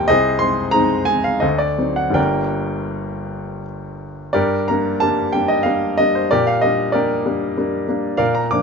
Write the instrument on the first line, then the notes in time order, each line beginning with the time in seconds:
grand piano
Already playing: D#1 D#2 G3 A#3 D#4 A#4 D#5 G5 A5 A#5 C6 D6
0.08 C2 G#4 C5 D#5
0.39 G#3 C4 D#4 C6
0.71 G#3 C4 D#4 A#5
1.05 G#3 C4 D#4 G#5
1.24 F5
1.40 D2 A4 C5 D#5
1.58 D5
1.78 F#3 C4 D#4
1.96 F#5
2.10 G2 G3 A#3
2.14 G1 D4 A#4 D5 G5
4.33 G2 G4 A#4 D5
4.68 G3 A#3 D4 A#5
5.00 G3 A#3 D4 A5
5.33 G3 A#3 D4 G5
5.48 D#5
5.63 G3 A#3 D4 F5
5.98 G3 A#3 D4 D#5
6.15 C5
6.31 A#2 G4 A#4 D5
6.47 F5
6.61 G3 A#3 D4 D#5
6.92 G3 A#3 D4 G4 A#4 D5
7.26 G3 A#3 D4
7.57 G3 A#3 D4
7.88 G3 A#3 D4
8.17 A#2 A#4 D5 F5
8.35 A#5
8.51 F3 A#3 D4 D6